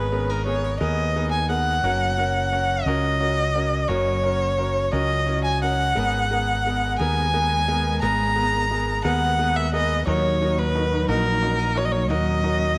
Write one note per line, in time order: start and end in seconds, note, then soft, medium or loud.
0.00 0.77 G#1 medium
0.00 1.83 G#3 medium
0.00 0.80 B3 soft
0.00 0.12 D#4 soft
0.00 0.31 B4 medium
0.12 0.38 B3 medium
0.12 0.29 C#4 medium
0.12 0.38 G#4 medium
0.12 0.38 A#4 medium
0.29 1.14 D#4 soft
0.29 0.45 A#4 medium
0.46 0.72 B3 medium
0.46 0.72 G#4 medium
0.46 0.64 G#4 medium
0.46 0.73 A#4 medium
0.46 0.78 C#5 medium
0.64 1.90 A#4 soft
0.80 1.79 D#2 medium
0.80 1.06 B3 medium
0.80 1.48 B3 medium
0.80 1.06 G#4 medium
0.80 1.07 A#4 medium
0.80 1.28 D#5 medium
1.15 1.41 B3 medium
1.15 1.90 D#4 medium
1.15 1.41 G#4 medium
1.15 1.42 A#4 medium
1.31 1.48 G#5 medium
1.49 1.75 B3 medium
1.49 1.90 B3 soft
1.49 1.75 G#4 medium
1.49 1.75 A#4 medium
1.49 2.86 F#5 medium
1.83 2.82 F#1 medium
1.83 3.89 F#3 medium
1.83 2.09 C#4 medium
1.83 2.09 F#4 medium
1.83 2.10 A#4 medium
2.17 2.44 C#4 medium
2.17 3.19 F#4 soft
2.17 2.44 F#4 medium
2.17 2.44 A#4 medium
2.52 2.78 C#4 medium
2.52 2.78 F#4 medium
2.52 4.58 A#4 medium
2.52 2.78 A#4 medium
2.85 3.85 C#2 medium
2.85 3.54 C#4 medium
2.85 3.12 C#4 medium
2.85 3.12 F#4 medium
2.85 3.13 A#4 medium
2.85 3.89 D#5 medium
3.20 3.46 C#4 medium
3.20 4.23 F#4 soft
3.20 3.46 F#4 medium
3.20 3.46 A#4 medium
3.55 3.81 C#4 medium
3.55 4.92 C#4 medium
3.55 3.81 F#4 medium
3.55 3.81 A#4 medium
3.88 4.89 F#1 medium
3.88 5.96 F#3 medium
3.88 4.15 C#4 medium
3.88 4.15 F#4 medium
3.88 4.15 A#4 medium
3.88 4.93 C#5 medium
4.23 4.50 C#4 medium
4.23 4.49 F#4 medium
4.23 5.27 F#4 soft
4.23 4.50 A#4 medium
4.57 4.84 C#4 medium
4.57 4.84 F#4 medium
4.57 6.65 A#4 medium
4.57 4.84 A#4 medium
4.92 5.92 C#2 medium
4.92 5.18 C#4 medium
4.92 5.61 C#4 medium
4.92 5.19 F#4 medium
4.92 5.19 A#4 medium
4.92 5.44 D#5 medium
5.26 5.53 C#4 medium
5.26 5.44 E4 soft
5.26 5.53 F#4 medium
5.26 5.53 A#4 medium
5.44 6.03 F#4 soft
5.44 5.60 G#5 medium
5.62 5.88 C#4 medium
5.62 6.03 C#4 soft
5.62 5.88 F#4 medium
5.62 5.88 A#4 medium
5.62 6.96 F#5 medium
5.95 6.96 G#1 medium
5.95 10.03 G#3 medium
5.95 8.01 G#3 medium
5.95 6.22 B3 medium
5.95 10.03 B3 medium
5.95 6.22 G#4 medium
5.95 10.03 A#4 medium
5.95 6.22 A#4 medium
6.31 6.57 B3 medium
6.31 7.34 D#4 soft
6.31 6.57 G#4 medium
6.31 6.57 A#4 medium
6.65 6.92 B3 medium
6.65 6.92 G#4 medium
6.65 8.70 A#4 medium
6.65 6.92 A#4 medium
6.99 7.99 D#2 medium
6.99 7.25 B3 medium
6.99 7.67 B3 medium
6.99 7.26 G#4 medium
6.99 7.26 A#4 medium
6.99 7.98 G#5 medium
7.33 7.59 B3 medium
7.33 8.36 D#4 medium
7.33 7.60 G#4 medium
7.33 7.60 A#4 medium
7.68 9.04 B3 medium
7.68 7.94 B3 medium
7.68 7.94 G#4 medium
7.68 7.94 A#4 medium
8.02 9.01 G#1 medium
8.02 10.06 G#3 medium
8.02 8.28 B3 medium
8.02 8.28 G#4 medium
8.02 8.28 A#4 medium
8.02 9.00 A#5 medium
8.36 8.62 B3 medium
8.36 9.38 D#4 soft
8.36 8.62 G#4 medium
8.36 8.62 A#4 medium
8.70 8.96 B3 medium
8.70 8.97 G#4 medium
8.70 12.20 A#4 medium
8.70 8.97 A#4 medium
9.04 10.03 D#2 medium
9.04 9.30 B3 medium
9.04 9.72 B3 medium
9.04 9.31 G#4 medium
9.04 9.31 A#4 medium
9.04 9.57 F#5 medium
9.39 9.64 B3 medium
9.39 10.40 D#4 medium
9.39 9.64 G#4 medium
9.39 9.65 A#4 medium
9.56 9.73 E5 medium
9.73 10.14 B3 medium
9.73 9.99 B3 medium
9.73 9.99 G#4 medium
9.73 9.99 A#4 medium
9.73 10.05 D#5 medium
10.07 11.05 D#2 medium
10.07 12.78 A#2 medium
10.07 12.09 F#3 medium
10.07 12.78 F#3 medium
10.07 10.33 D#4 medium
10.07 12.09 D#4 medium
10.07 10.33 F#4 medium
10.07 10.33 A#4 medium
10.07 10.60 C#5 medium
10.40 11.42 D#4 medium
10.40 10.67 D#4 medium
10.40 10.67 F#4 medium
10.40 10.67 A#4 medium
10.58 11.08 B4 medium
10.75 11.00 D#4 medium
10.75 11.01 F#4 medium
10.75 11.01 A#4 medium
11.08 12.11 A#1 medium
11.08 11.76 A#3 medium
11.08 11.34 D#4 medium
11.08 11.34 F#4 medium
11.08 11.79 A#4 medium
11.08 11.35 A#4 medium
11.42 11.59 C#4 medium
11.42 11.68 D#4 medium
11.42 11.68 F#4 medium
11.42 11.68 A#4 medium
11.59 12.43 D#4 soft
11.75 12.78 A#3 medium
11.75 12.01 D#4 medium
11.75 12.02 F#4 medium
11.75 12.02 A#4 medium
11.75 11.86 C#5 medium
11.85 11.93 D#5 medium
11.91 12.11 C#5 medium
12.10 12.78 D#2 medium
12.10 12.78 F#3 medium
12.10 12.78 C#4 medium
12.10 12.36 D#4 medium
12.10 12.36 F#4 medium
12.10 12.36 A#4 medium
12.10 12.78 D#5 medium
12.44 12.70 D#4 medium
12.44 12.78 D#4 medium
12.44 12.70 F#4 medium
12.44 12.70 A#4 medium